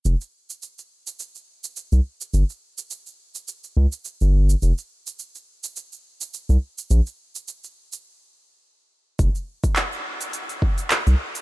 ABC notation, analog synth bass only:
X:1
M:4/4
L:1/16
Q:"Swing 16ths" 1/4=105
K:Cphr
V:1 name="Analog synth bass" clef=bass
F,,, z12 C,, z2 | G,,, z8 z D,, z2 G,,,2 z | F,,, z12 C,, z2 | B,,, z12 z3 |
F,,, z12 C,, z2 |]